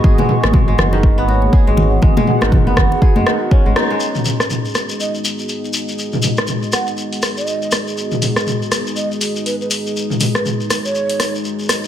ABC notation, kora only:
X:1
M:4/4
L:1/16
Q:"Swing 16ths" 1/4=121
K:G#m
V:1 name="Kora" clef=bass
G G, z2 G, G, z D, z B, F z G G, z2 | G, G, z D, z B, F z G G, D, z C G, D G, | z16 | z16 |
z16 | z16 |]